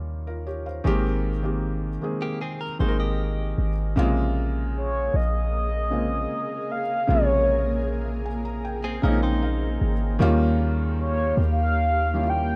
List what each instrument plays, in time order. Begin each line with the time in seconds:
Already playing: 808-style bass D#2, felt piano D#3 G3 A#3 C#4 D#4 F4
0.27 felt piano F4 A#4
0.47 felt piano G4 C#5
0.66 felt piano C5 F5
0.84 808-style bass G#1, felt piano D#3 G#3 A#3 C4 G4
1.43 felt piano D#3 G#3 A#3 C4 G4
2.01 felt piano D#3 G#3 A#3 C4 G#4
2.22 clean electric guitar A#3 G4
2.41 clean electric guitar C4 G#4
2.61 clean electric guitar A#4
2.79 808-style bass G#1, felt piano D#3 G#3 A#3 C4 G#4, clean electric guitar D#4 C5
2.88 felt piano A#4
3.00 clean electric guitar G4 D#5
3.58 808-style bass G#1
3.96 808-style bass A#1, felt piano C3 C#3 G#3 A#3 F4, ambient pad A#3 G#4 A#4
4.77 soft synth lead C#5
5.14 808-style bass A#1, soft synth lead D#5
5.91 felt piano C#3 G#3 A#3 C4 F4
6.72 soft synth lead F5
7.07 808-style bass A#1, felt piano C3 C#3 G#3 A#3 F4, soft synth lead C#5
8.26 felt piano G#5
8.45 felt piano A#5
8.65 felt piano G5
8.84 clean electric guitar C4 G#4
9.02 808-style bass A#1, felt piano C#3 G#3 A#3 C4 D#4 F5, clean electric guitar C#4 A#4
9.23 clean electric guitar D#4 C5, felt piano G5
9.42 felt piano F5
9.81 808-style bass G#1
10.19 808-style bass D#2, felt piano D#3 G3 A#3 C#4 F4, ambient pad G4 F5
11.00 soft synth lead C#5
11.37 808-style bass D#2
11.52 soft synth lead F5
12.14 felt piano D#3 G3 A#3 C#4 E4
12.23 felt piano F4
12.30 soft synth lead G5